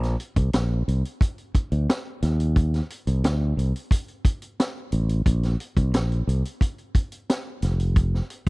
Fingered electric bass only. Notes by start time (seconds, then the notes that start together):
Already playing: A#1
0.36 C2
0.54 A#1
0.88 C2
1.55 muted fingered electric bass stroke
1.72 D2
2.23 D#2
3.07 C2
3.24 D2
3.57 C2
4.93 A1
5.26 A#1
5.77 C2
5.94 A#1
6.27 C2
7.63 F1